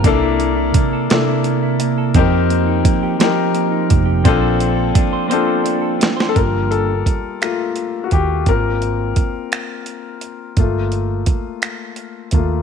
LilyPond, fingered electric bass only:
\new Staff \with { instrumentName = "Fingered electric bass" } { \clef bass \time 6/8 \key bes \major \tempo 4. = 57 c,4 r2 | f,4 r4. f,,8 | bes,,4 r2 | \key g \minor g,,4 r4. ees,8 |
aes,,4 r2 | g,,4 r4. ees,8 | }